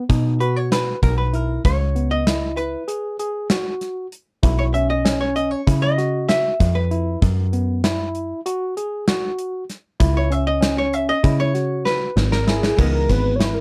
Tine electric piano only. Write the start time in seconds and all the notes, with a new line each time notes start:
0.09 D#4
0.40 F#4
1.33 E4
1.95 B3
2.27 E4
2.88 G#4
3.19 G#4
3.50 F#4
4.43 E4
4.74 C#4
5.05 C#4
5.67 E4
5.98 F#4
6.91 E4
7.53 B3
7.84 E4
8.46 F#4
8.77 G#4
9.08 F#4
10.00 E4
10.30 C#4
10.61 C#4
11.23 E4
11.54 F#4
12.47 E4
13.09 B3
13.40 E4